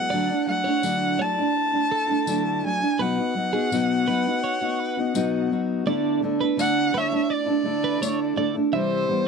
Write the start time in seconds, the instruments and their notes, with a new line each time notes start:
Already playing: steel-string acoustic guitar F#3 G#3 B3 E4, violin F#5
0.10 steel-string acoustic guitar D3 F#3 A3 D4, clean electric guitar D5
0.15 steel-string acoustic guitar E4
0.29 steel-string acoustic guitar A3 D4 E4
0.47 steel-string acoustic guitar F#3 A3 D4 E4, violin F#5
0.64 steel-string acoustic guitar A3 D4 E4, clean electric guitar C#5
0.83 steel-string acoustic guitar D3 F#3 A3 D4 E4, tambourine
1.19 steel-string acoustic guitar F#3 A3 D4 E4, clean electric guitar D5, violin A5
1.38 steel-string acoustic guitar A3 D4 E4
1.72 steel-string acoustic guitar A3 D4 E4
1.92 clean electric guitar A4
2.07 steel-string acoustic guitar A3 D4 E4
2.26 steel-string acoustic guitar D3 F#3 A3 D4 E4, tambourine
2.64 steel-string acoustic guitar F#3 A3 D4 E4, violin G#5
2.80 steel-string acoustic guitar A3 D4 E4
2.99 steel-string acoustic guitar B2 F#3 B3 D#4 F#4, clean electric guitar B4, violin F#5
3.17 steel-string acoustic guitar B3 D#4 F#4
3.35 steel-string acoustic guitar F#3 B3 D#4 F#4
3.53 steel-string acoustic guitar B3 D#4 F#4, clean electric guitar G#4
3.71 steel-string acoustic guitar B2 F#3 B3 D#4 F#4, tambourine
4.07 steel-string acoustic guitar F#3 B3 D#4 F#4, clean electric guitar B4
4.26 steel-string acoustic guitar B3 D#4 F#4
4.44 clean electric guitar C#5
4.61 steel-string acoustic guitar B3 D#4 F#4
4.80 clean electric guitar B4
4.97 steel-string acoustic guitar B3 D#4 F#4
5.14 steel-string acoustic guitar B2 F#3 B3 D#4 F#4, tambourine
5.50 steel-string acoustic guitar F#3 B3 D#4 F#4
5.86 steel-string acoustic guitar D3 A3 D4 E4, clean electric guitar D5
6.22 steel-string acoustic guitar D3 A3 D4 E4
6.40 steel-string acoustic guitar A3 D4 E4, clean electric guitar B4
6.57 steel-string acoustic guitar D3 A3 D4 E4, violin F#5, tambourine
6.93 steel-string acoustic guitar D3 A3 D4 E4, clean electric guitar C#5
6.98 violin E5
7.11 steel-string acoustic guitar A3 D4 E4
7.30 clean electric guitar D5, violin D5
7.46 steel-string acoustic guitar A3 D4 E4
7.63 steel-string acoustic guitar D3 A3 D4 E4
7.84 clean electric guitar B4
8.00 steel-string acoustic guitar D3 A3 D4 E4, clean electric guitar C#5, tambourine
8.36 steel-string acoustic guitar D3 A3 D4 E4, clean electric guitar D5
8.54 steel-string acoustic guitar A3 D4 E4
8.72 steel-string acoustic guitar C3 E3 G3 E4, violin C5, clean electric guitar E5
9.07 steel-string acoustic guitar E3 G3 B3 E4